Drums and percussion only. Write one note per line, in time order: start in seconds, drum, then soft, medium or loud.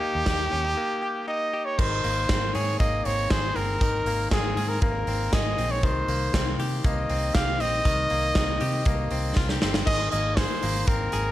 0.26 kick loud
0.26 snare medium
0.26 closed hi-hat medium
1.79 kick loud
1.79 crash medium
2.04 open hi-hat medium
2.29 kick loud
2.29 snare loud
2.29 closed hi-hat medium
2.55 open hi-hat medium
2.80 kick loud
2.80 closed hi-hat medium
3.05 open hi-hat medium
3.30 kick loud
3.30 snare loud
3.30 closed hi-hat medium
3.56 open hi-hat medium
3.81 kick loud
3.81 closed hi-hat medium
4.06 open hi-hat medium
4.31 kick loud
4.31 snare loud
4.57 open hi-hat medium
4.82 kick loud
4.82 closed hi-hat medium
5.07 open hi-hat medium
5.33 kick loud
5.33 snare loud
5.33 closed hi-hat medium
5.58 open hi-hat medium
5.83 kick loud
5.83 closed hi-hat medium
6.08 open hi-hat medium
6.34 kick loud
6.34 snare loud
6.34 closed hi-hat medium
6.59 open hi-hat medium
6.84 kick loud
6.84 closed hi-hat medium
7.09 open hi-hat medium
7.35 kick loud
7.35 snare loud
7.35 closed hi-hat medium
7.60 open hi-hat medium
7.85 kick loud
7.85 closed hi-hat medium
8.10 open hi-hat medium
8.35 kick loud
8.35 snare loud
8.35 closed hi-hat medium
8.61 open hi-hat medium
8.85 kick loud
8.85 closed hi-hat medium
9.11 open hi-hat medium
9.36 kick loud
9.36 snare medium
9.49 snare medium
9.62 snare loud
9.74 snare loud
9.87 kick loud
9.87 crash loud
10.12 hi-hat pedal medium
10.12 open hi-hat medium
10.37 kick loud
10.37 snare loud
10.37 hi-hat pedal medium
10.37 open hi-hat medium
10.62 hi-hat pedal medium
10.62 open hi-hat medium
10.87 kick loud
10.87 hi-hat pedal medium
10.87 open hi-hat medium
11.12 hi-hat pedal medium
11.12 open hi-hat medium